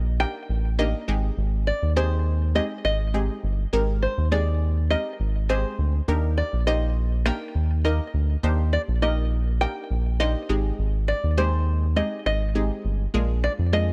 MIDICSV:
0, 0, Header, 1, 4, 480
1, 0, Start_track
1, 0, Tempo, 588235
1, 1123, Time_signature, 4, 2, 24, 8
1, 11365, End_track
2, 0, Start_track
2, 0, Title_t, "Five-string banjo"
2, 0, Program_c, 0, 105
2, 0, Note_on_c, 0, 75, 91
2, 159, Note_off_c, 0, 75, 0
2, 163, Note_on_c, 0, 79, 110
2, 640, Note_off_c, 0, 79, 0
2, 643, Note_on_c, 0, 75, 82
2, 984, Note_off_c, 0, 75, 0
2, 1364, Note_on_c, 0, 74, 84
2, 1601, Note_off_c, 0, 74, 0
2, 1605, Note_on_c, 0, 72, 92
2, 2082, Note_off_c, 0, 72, 0
2, 2085, Note_on_c, 0, 75, 114
2, 2150, Note_off_c, 0, 75, 0
2, 2323, Note_on_c, 0, 75, 98
2, 2770, Note_off_c, 0, 75, 0
2, 3284, Note_on_c, 0, 72, 86
2, 3521, Note_off_c, 0, 72, 0
2, 3524, Note_on_c, 0, 74, 95
2, 3971, Note_off_c, 0, 74, 0
2, 4002, Note_on_c, 0, 75, 111
2, 4481, Note_off_c, 0, 75, 0
2, 4484, Note_on_c, 0, 72, 85
2, 4825, Note_off_c, 0, 72, 0
2, 5202, Note_on_c, 0, 74, 83
2, 5426, Note_off_c, 0, 74, 0
2, 5442, Note_on_c, 0, 75, 90
2, 5918, Note_off_c, 0, 75, 0
2, 5921, Note_on_c, 0, 79, 115
2, 6369, Note_off_c, 0, 79, 0
2, 6402, Note_on_c, 0, 75, 87
2, 6744, Note_off_c, 0, 75, 0
2, 7123, Note_on_c, 0, 74, 81
2, 7188, Note_off_c, 0, 74, 0
2, 7363, Note_on_c, 0, 75, 94
2, 7810, Note_off_c, 0, 75, 0
2, 7842, Note_on_c, 0, 79, 110
2, 8290, Note_off_c, 0, 79, 0
2, 8322, Note_on_c, 0, 75, 87
2, 8664, Note_off_c, 0, 75, 0
2, 9043, Note_on_c, 0, 74, 86
2, 9266, Note_off_c, 0, 74, 0
2, 9284, Note_on_c, 0, 72, 96
2, 9764, Note_on_c, 0, 75, 109
2, 9778, Note_off_c, 0, 72, 0
2, 9996, Note_off_c, 0, 75, 0
2, 10006, Note_on_c, 0, 75, 100
2, 10452, Note_off_c, 0, 75, 0
2, 10965, Note_on_c, 0, 74, 94
2, 11029, Note_off_c, 0, 74, 0
2, 11205, Note_on_c, 0, 75, 114
2, 11365, Note_off_c, 0, 75, 0
2, 11365, End_track
3, 0, Start_track
3, 0, Title_t, "Synth stab"
3, 0, Program_c, 1, 62
3, 161, Note_on_c, 1, 58, 72
3, 162, Note_on_c, 1, 62, 65
3, 163, Note_on_c, 1, 63, 69
3, 164, Note_on_c, 1, 67, 67
3, 165, Note_on_c, 1, 70, 78
3, 558, Note_off_c, 1, 58, 0
3, 559, Note_off_c, 1, 62, 0
3, 559, Note_off_c, 1, 63, 0
3, 560, Note_off_c, 1, 67, 0
3, 560, Note_off_c, 1, 70, 0
3, 641, Note_on_c, 1, 58, 91
3, 642, Note_on_c, 1, 62, 83
3, 643, Note_on_c, 1, 63, 84
3, 644, Note_on_c, 1, 67, 80
3, 645, Note_on_c, 1, 70, 100
3, 873, Note_off_c, 1, 63, 0
3, 874, Note_off_c, 1, 67, 0
3, 880, Note_on_c, 1, 56, 87
3, 881, Note_on_c, 1, 60, 76
3, 882, Note_off_c, 1, 58, 0
3, 882, Note_off_c, 1, 62, 0
3, 883, Note_on_c, 1, 63, 78
3, 884, Note_off_c, 1, 70, 0
3, 884, Note_on_c, 1, 67, 76
3, 885, Note_on_c, 1, 68, 92
3, 1474, Note_off_c, 1, 56, 0
3, 1475, Note_off_c, 1, 60, 0
3, 1476, Note_off_c, 1, 63, 0
3, 1476, Note_off_c, 1, 67, 0
3, 1477, Note_off_c, 1, 68, 0
3, 1601, Note_on_c, 1, 56, 93
3, 1602, Note_on_c, 1, 60, 86
3, 1603, Note_on_c, 1, 63, 86
3, 1604, Note_on_c, 1, 67, 86
3, 1605, Note_on_c, 1, 68, 105
3, 1998, Note_off_c, 1, 56, 0
3, 1999, Note_off_c, 1, 60, 0
3, 1999, Note_off_c, 1, 63, 0
3, 1999, Note_off_c, 1, 67, 0
3, 2000, Note_off_c, 1, 68, 0
3, 2082, Note_on_c, 1, 56, 89
3, 2082, Note_on_c, 1, 60, 77
3, 2084, Note_on_c, 1, 63, 78
3, 2084, Note_on_c, 1, 67, 79
3, 2086, Note_on_c, 1, 68, 97
3, 2478, Note_off_c, 1, 56, 0
3, 2479, Note_off_c, 1, 60, 0
3, 2479, Note_off_c, 1, 63, 0
3, 2480, Note_off_c, 1, 67, 0
3, 2481, Note_off_c, 1, 68, 0
3, 2561, Note_on_c, 1, 56, 85
3, 2563, Note_on_c, 1, 60, 73
3, 2564, Note_on_c, 1, 63, 74
3, 2564, Note_on_c, 1, 67, 74
3, 2566, Note_on_c, 1, 68, 93
3, 2958, Note_off_c, 1, 56, 0
3, 2959, Note_off_c, 1, 60, 0
3, 2959, Note_off_c, 1, 63, 0
3, 2960, Note_off_c, 1, 67, 0
3, 2961, Note_off_c, 1, 68, 0
3, 3041, Note_on_c, 1, 56, 91
3, 3042, Note_on_c, 1, 60, 83
3, 3044, Note_on_c, 1, 63, 85
3, 3044, Note_on_c, 1, 67, 81
3, 3046, Note_on_c, 1, 70, 104
3, 3438, Note_off_c, 1, 56, 0
3, 3439, Note_off_c, 1, 60, 0
3, 3440, Note_off_c, 1, 63, 0
3, 3440, Note_off_c, 1, 67, 0
3, 3441, Note_off_c, 1, 70, 0
3, 3521, Note_on_c, 1, 56, 82
3, 3522, Note_on_c, 1, 60, 72
3, 3523, Note_on_c, 1, 63, 75
3, 3524, Note_on_c, 1, 67, 72
3, 3524, Note_on_c, 1, 68, 91
3, 3918, Note_off_c, 1, 56, 0
3, 3919, Note_off_c, 1, 60, 0
3, 3919, Note_off_c, 1, 63, 0
3, 3920, Note_off_c, 1, 67, 0
3, 3920, Note_off_c, 1, 68, 0
3, 4001, Note_on_c, 1, 56, 75
3, 4002, Note_on_c, 1, 60, 66
3, 4003, Note_on_c, 1, 63, 65
3, 4004, Note_on_c, 1, 67, 69
3, 4005, Note_on_c, 1, 70, 83
3, 4398, Note_off_c, 1, 56, 0
3, 4399, Note_off_c, 1, 60, 0
3, 4399, Note_off_c, 1, 63, 0
3, 4400, Note_off_c, 1, 67, 0
3, 4400, Note_off_c, 1, 70, 0
3, 4480, Note_on_c, 1, 56, 92
3, 4481, Note_on_c, 1, 60, 82
3, 4482, Note_on_c, 1, 63, 84
3, 4483, Note_on_c, 1, 67, 82
3, 4484, Note_on_c, 1, 68, 103
3, 4878, Note_off_c, 1, 56, 0
3, 4878, Note_off_c, 1, 60, 0
3, 4879, Note_off_c, 1, 63, 0
3, 4879, Note_off_c, 1, 67, 0
3, 4880, Note_off_c, 1, 68, 0
3, 4962, Note_on_c, 1, 58, 96
3, 4962, Note_on_c, 1, 62, 88
3, 4963, Note_on_c, 1, 63, 85
3, 4964, Note_on_c, 1, 67, 89
3, 4965, Note_on_c, 1, 70, 106
3, 5358, Note_off_c, 1, 58, 0
3, 5359, Note_off_c, 1, 62, 0
3, 5359, Note_off_c, 1, 63, 0
3, 5360, Note_off_c, 1, 67, 0
3, 5360, Note_off_c, 1, 70, 0
3, 5441, Note_on_c, 1, 58, 87
3, 5444, Note_on_c, 1, 63, 82
3, 5444, Note_on_c, 1, 67, 86
3, 5445, Note_on_c, 1, 72, 101
3, 5838, Note_off_c, 1, 58, 0
3, 5840, Note_off_c, 1, 63, 0
3, 5840, Note_off_c, 1, 67, 0
3, 5840, Note_off_c, 1, 72, 0
3, 5921, Note_on_c, 1, 58, 86
3, 5922, Note_on_c, 1, 62, 77
3, 5923, Note_on_c, 1, 63, 77
3, 5924, Note_on_c, 1, 67, 81
3, 5925, Note_on_c, 1, 70, 91
3, 6318, Note_off_c, 1, 58, 0
3, 6319, Note_off_c, 1, 62, 0
3, 6319, Note_off_c, 1, 63, 0
3, 6320, Note_off_c, 1, 67, 0
3, 6320, Note_off_c, 1, 70, 0
3, 6401, Note_on_c, 1, 58, 85
3, 6403, Note_on_c, 1, 63, 70
3, 6404, Note_on_c, 1, 67, 73
3, 6405, Note_on_c, 1, 70, 92
3, 6798, Note_off_c, 1, 58, 0
3, 6799, Note_off_c, 1, 63, 0
3, 6800, Note_off_c, 1, 67, 0
3, 6800, Note_off_c, 1, 70, 0
3, 6880, Note_on_c, 1, 58, 95
3, 6882, Note_on_c, 1, 62, 80
3, 6882, Note_on_c, 1, 63, 82
3, 6884, Note_on_c, 1, 67, 84
3, 6885, Note_on_c, 1, 72, 102
3, 7278, Note_off_c, 1, 58, 0
3, 7279, Note_off_c, 1, 62, 0
3, 7279, Note_off_c, 1, 63, 0
3, 7279, Note_off_c, 1, 67, 0
3, 7280, Note_off_c, 1, 72, 0
3, 7361, Note_on_c, 1, 58, 81
3, 7363, Note_on_c, 1, 63, 74
3, 7364, Note_on_c, 1, 67, 71
3, 7365, Note_on_c, 1, 70, 87
3, 7758, Note_off_c, 1, 58, 0
3, 7759, Note_off_c, 1, 63, 0
3, 7760, Note_off_c, 1, 67, 0
3, 7760, Note_off_c, 1, 70, 0
3, 7841, Note_on_c, 1, 58, 75
3, 7842, Note_on_c, 1, 62, 68
3, 7843, Note_on_c, 1, 63, 68
3, 7844, Note_on_c, 1, 67, 66
3, 7845, Note_on_c, 1, 70, 82
3, 8238, Note_off_c, 1, 58, 0
3, 8239, Note_off_c, 1, 62, 0
3, 8239, Note_off_c, 1, 63, 0
3, 8240, Note_off_c, 1, 67, 0
3, 8240, Note_off_c, 1, 70, 0
3, 8320, Note_on_c, 1, 58, 90
3, 8321, Note_on_c, 1, 62, 85
3, 8323, Note_on_c, 1, 63, 84
3, 8324, Note_on_c, 1, 67, 84
3, 8324, Note_on_c, 1, 72, 100
3, 8553, Note_off_c, 1, 63, 0
3, 8554, Note_off_c, 1, 67, 0
3, 8561, Note_on_c, 1, 56, 85
3, 8562, Note_off_c, 1, 58, 0
3, 8562, Note_off_c, 1, 62, 0
3, 8562, Note_on_c, 1, 60, 75
3, 8563, Note_on_c, 1, 63, 74
3, 8564, Note_off_c, 1, 72, 0
3, 8564, Note_on_c, 1, 67, 78
3, 8565, Note_on_c, 1, 68, 90
3, 9155, Note_off_c, 1, 56, 0
3, 9155, Note_off_c, 1, 60, 0
3, 9156, Note_off_c, 1, 63, 0
3, 9156, Note_off_c, 1, 67, 0
3, 9157, Note_off_c, 1, 68, 0
3, 9281, Note_on_c, 1, 56, 90
3, 9282, Note_on_c, 1, 60, 81
3, 9283, Note_on_c, 1, 63, 84
3, 9284, Note_on_c, 1, 67, 85
3, 9285, Note_on_c, 1, 68, 102
3, 9678, Note_off_c, 1, 56, 0
3, 9679, Note_off_c, 1, 60, 0
3, 9679, Note_off_c, 1, 63, 0
3, 9680, Note_off_c, 1, 67, 0
3, 9680, Note_off_c, 1, 68, 0
3, 9761, Note_on_c, 1, 56, 87
3, 9762, Note_on_c, 1, 60, 75
3, 9763, Note_on_c, 1, 63, 80
3, 9764, Note_on_c, 1, 67, 79
3, 9765, Note_on_c, 1, 68, 97
3, 10158, Note_off_c, 1, 56, 0
3, 10159, Note_off_c, 1, 60, 0
3, 10159, Note_off_c, 1, 63, 0
3, 10160, Note_off_c, 1, 67, 0
3, 10160, Note_off_c, 1, 68, 0
3, 10241, Note_on_c, 1, 56, 84
3, 10242, Note_on_c, 1, 60, 73
3, 10243, Note_on_c, 1, 63, 76
3, 10244, Note_on_c, 1, 67, 72
3, 10245, Note_on_c, 1, 68, 88
3, 10638, Note_off_c, 1, 56, 0
3, 10639, Note_off_c, 1, 60, 0
3, 10639, Note_off_c, 1, 63, 0
3, 10640, Note_off_c, 1, 67, 0
3, 10640, Note_off_c, 1, 68, 0
3, 10721, Note_on_c, 1, 56, 93
3, 10722, Note_on_c, 1, 58, 85
3, 10723, Note_on_c, 1, 62, 85
3, 10724, Note_on_c, 1, 65, 84
3, 10725, Note_on_c, 1, 68, 99
3, 11118, Note_off_c, 1, 56, 0
3, 11119, Note_off_c, 1, 58, 0
3, 11119, Note_off_c, 1, 62, 0
3, 11120, Note_off_c, 1, 65, 0
3, 11120, Note_off_c, 1, 68, 0
3, 11201, Note_on_c, 1, 56, 77
3, 11202, Note_on_c, 1, 58, 71
3, 11203, Note_on_c, 1, 62, 72
3, 11204, Note_on_c, 1, 65, 74
3, 11205, Note_on_c, 1, 68, 90
3, 11365, Note_off_c, 1, 56, 0
3, 11365, Note_off_c, 1, 58, 0
3, 11365, Note_off_c, 1, 62, 0
3, 11365, Note_off_c, 1, 65, 0
3, 11365, Note_off_c, 1, 68, 0
3, 11365, End_track
4, 0, Start_track
4, 0, Title_t, "Analog synth bass"
4, 0, Program_c, 2, 38
4, 0, Note_on_c, 2, 34, 102
4, 206, Note_off_c, 2, 34, 0
4, 403, Note_on_c, 2, 33, 90
4, 769, Note_off_c, 2, 33, 0
4, 883, Note_on_c, 2, 32, 92
4, 1066, Note_off_c, 2, 32, 0
4, 1123, Note_on_c, 2, 32, 109
4, 1403, Note_off_c, 2, 32, 0
4, 1490, Note_on_c, 2, 39, 99
4, 2125, Note_off_c, 2, 39, 0
4, 2323, Note_on_c, 2, 32, 90
4, 2689, Note_off_c, 2, 32, 0
4, 2803, Note_on_c, 2, 31, 97
4, 2986, Note_off_c, 2, 31, 0
4, 3043, Note_on_c, 2, 32, 107
4, 3323, Note_off_c, 2, 32, 0
4, 3410, Note_on_c, 2, 39, 101
4, 4045, Note_off_c, 2, 39, 0
4, 4242, Note_on_c, 2, 32, 95
4, 4609, Note_off_c, 2, 32, 0
4, 4722, Note_on_c, 2, 38, 94
4, 4905, Note_off_c, 2, 38, 0
4, 4963, Note_on_c, 2, 39, 111
4, 5243, Note_off_c, 2, 39, 0
4, 5330, Note_on_c, 2, 34, 103
4, 5965, Note_off_c, 2, 34, 0
4, 6163, Note_on_c, 2, 39, 96
4, 6529, Note_off_c, 2, 39, 0
4, 6643, Note_on_c, 2, 38, 95
4, 6826, Note_off_c, 2, 38, 0
4, 6883, Note_on_c, 2, 39, 111
4, 7163, Note_off_c, 2, 39, 0
4, 7250, Note_on_c, 2, 34, 103
4, 7885, Note_off_c, 2, 34, 0
4, 8083, Note_on_c, 2, 34, 95
4, 8449, Note_off_c, 2, 34, 0
4, 8563, Note_on_c, 2, 32, 95
4, 8746, Note_off_c, 2, 32, 0
4, 8804, Note_on_c, 2, 32, 110
4, 9083, Note_off_c, 2, 32, 0
4, 9170, Note_on_c, 2, 39, 101
4, 9805, Note_off_c, 2, 39, 0
4, 10004, Note_on_c, 2, 32, 98
4, 10370, Note_off_c, 2, 32, 0
4, 10483, Note_on_c, 2, 31, 93
4, 10666, Note_off_c, 2, 31, 0
4, 10723, Note_on_c, 2, 34, 108
4, 11003, Note_off_c, 2, 34, 0
4, 11090, Note_on_c, 2, 41, 102
4, 11365, Note_off_c, 2, 41, 0
4, 11365, End_track
0, 0, End_of_file